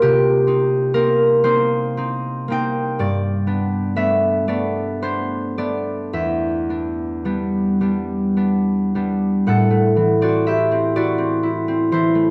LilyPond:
<<
  \new Staff \with { instrumentName = "Harp" } { \time 6/8 \key a \dorian \tempo 4. = 40 <g' ais' bis'>4 bes'8 c''4 g''8 | d''4 e''8 d''8 c''8 d''8 | e''2. | <a' fis''>8. <fis' d''>16 <g' e''>8 <fis' d''>4 <e' c''>8 | }
  \new Staff \with { instrumentName = "Harp" } { \time 6/8 \key a \dorian <c ais bis>8 <c' ees'>8 <bes c' ees'>8 <bes c' ees'>8 <c' ees'>8 <bes c' ees'>8 | g,8 <b d'>8 <a b d'>8 <a b d'>8 <b d'>8 <a b d'>8 | e,8 <b d'>8 <g b d'>8 <g b d'>8 <b d'>8 <g b d'>8 | a,16 a16 e16 c'16 e'16 c'16 e'16 c'16 e'16 c'16 e16 a16 | }
>>